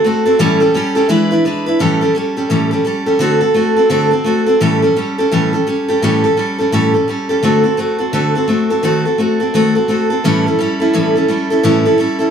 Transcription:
0.04 A3 C4 F#4 A4
0.25 C4 F#4 A4
0.39 A2 E3 G3 C#4 G4 A4
0.60 G3 C#4 G4 A4
0.74 G3 C#4 G4 A4
0.95 G3 C#4 G4 A4
1.09 E3 G#3 D4 E4 B4
1.31 D4 E4 B4
1.45 G#3 D4 E4 B4
1.66 D4 E4 B4
1.79 A2 E3 G3 C#4 G4 A4
2.01 G3 C#4 G4 A4
2.15 G3 C#4 G4 A4
2.37 G3 C#4 G4 A4
2.50 A2 E3 G3 C#4 G4 A4
2.71 G3 C#4 G4 A4
2.85 G3 C#4 G4 A4
3.06 G3 C#4 G4 A4
3.19 D3 A3 C4 F#4 A4
3.41 C4 F#4 A4
3.54 A3 C4 F#4 A4
3.76 C4 F#4 A4
3.90 D3 A3 C4 F#4 A4
4.11 C4 F#4 A4
4.24 A3 C4 F#4 A4
4.46 C4 F#4 A4
4.61 A2 E3 G3 C#4 G4 A4
4.82 G3 C#4 G4 A4
4.96 G3 C#4 G4 A4
5.18 G3 C#4 G4 A4
5.32 A2 E3 G3 C#4 G4 A4
5.53 G3 C#4 G4 A4
5.67 G3 C#4 G4 A4
5.88 G3 C#4 G4 A4
6.02 A2 E3 G3 C#4 G4 A4
6.24 G3 C#4 G4 A4
6.37 G3 C#4 G4 A4
6.59 G3 C#4 G4 A4
6.72 A2 E3 G3 C#4 G4 A4
6.94 G3 C#4 G4 A4
7.08 G3 C#4 G4 A4
7.29 G3 C#4 G4 A4
7.43 D3 A3 C4 F#4 A4
7.64 C4 F#4 A4
7.77 A3 C4 F#4 A4
7.98 C4 F#4 A4
8.13 D3 A3 C4 F#4 A4
8.35 C4 F#4 A4
8.48 A3 C4 F#4 A4
8.70 C4 F#4 A4
8.83 D#3 A3 C4 F#4 A4
9.05 C4 F#4 A4
9.18 A3 C4 F#4 A4
9.40 C4 F#4 A4
9.54 D#3 A3 C4 F#4 A4
9.75 C4 F#4 A4
9.88 A3 C4 F#4 A4
10.10 C4 F#4 A4
10.24 A2 E3 G3 C#4 E4 A4
10.46 G3 C#4 E4 A4
10.59 G3 C#4 E4 A4
10.80 G3 C#4 E4 A4
10.93 A2 E3 G3 C#4 E4 A4
11.15 G3 C#4 E4 A4
11.28 G3 C#4 E4 A4
11.50 G3 C#4 E4 A4
11.63 A2 E3 G3 C#4 E4 A4
11.85 G3 C#4 E4 A4
11.98 G3 C#4 E4 A4
12.19 G3 C#4 E4 A4

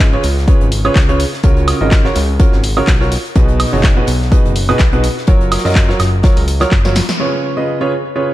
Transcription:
Already playing: G#1
0.00 kick
0.13 C#3 F4 G#4 B4 C#5
0.23 C#2, closed hi-hat, open hi-hat
0.38 snare
0.48 C#3 F4 G#4 B4 C#5, kick, closed hi-hat
0.61 G#1, closed hi-hat
0.72 closed hi-hat, open hi-hat
0.85 C#3 F4 G#4 B4 C#5, high woodblock
0.95 C#2, kick, snare, clap, closed hi-hat
1.09 C#3 F4 G#4 B4 C#5, closed hi-hat
1.20 closed hi-hat, open hi-hat
1.33 snare
1.43 C#2 C#3 F4 F#4 A#4 C#5, kick, closed hi-hat
1.57 closed hi-hat
1.68 snare, closed hi-hat, open hi-hat, high woodblock
1.81 G#1 C#3 F4 F#4 A#4 D#5
1.91 kick, snare, clap, closed hi-hat
2.05 C#3 F4 F#4 A#4 C#5, snare
2.15 C#2, snare, closed hi-hat, open hi-hat
2.40 C#3 F4 F#4 A#4 C#5, kick, closed hi-hat
2.52 G#1, snare
2.63 closed hi-hat, open hi-hat
2.77 C#3 F4 F#4 A#4 C#5, high woodblock
2.87 B1, kick, snare, clap, closed hi-hat
3.01 F4 F#4 A#4 C#5, snare
3.12 closed hi-hat, open hi-hat
3.25 closed hi-hat
3.35 B1 B2 D#4 F#4 G#4 B4, kick, closed hi-hat
3.48 closed hi-hat
3.60 open hi-hat, high woodblock
3.73 F#1 B2 D#4 F#4 G#4 C#5
3.83 kick, snare, clap, closed hi-hat
3.97 B2 D#4 F#4 G#4 B4
4.07 B1, closed hi-hat, open hi-hat
4.21 snare
4.32 B2 D#4 F#4 G#4 B4, kick, closed hi-hat
4.45 F#1, closed hi-hat
4.56 closed hi-hat, open hi-hat
4.69 B2 D#4 F#4 G#4 B4, high woodblock
4.79 B1, kick, snare, clap, closed hi-hat
4.93 B2 D#4 F#4 G#4 B4, closed hi-hat
5.04 closed hi-hat, open hi-hat
5.17 snare
5.27 F#1 F#3 F4 F#4 A#4 C#5, kick, closed hi-hat
5.41 closed hi-hat
5.52 snare, closed hi-hat, open hi-hat, high woodblock
5.59 snare, closed hi-hat
5.64 F#2 F#3 F4 F#4 A#4 D#5, snare, closed hi-hat
5.70 snare, closed hi-hat
5.75 kick, snare, clap, closed hi-hat
5.89 F#3 F4 F#4 A#4 C#5, snare
5.99 F#1, snare, closed hi-hat, open hi-hat, high woodblock
6.23 F#3 F4 F#4 A#4 C#5, kick, snare, closed hi-hat
6.37 C#2, closed hi-hat, open hi-hat
6.48 closed hi-hat, open hi-hat
6.60 F#3 F4 F#4 A#4 C#5, snare, closed hi-hat, high woodblock
6.71 F#1, kick, clap, closed hi-hat
6.85 F#3 F4 F#4 A#4 C#5, snare, closed hi-hat
6.95 snare, closed hi-hat, open hi-hat
7.09 snare, closed hi-hat
7.20 C#3 F4 G#4 B4 C#5
7.34 shaker
7.44 open hi-hat, shaker
7.57 C#3 F4 G#4 B4 D#5
7.68 shaker
7.81 C#3 F4 G#4 B4 C#5
7.92 open hi-hat, shaker
8.06 shaker
8.16 C#3 F4 G#4 B4 C#5, shaker
8.30 shaker

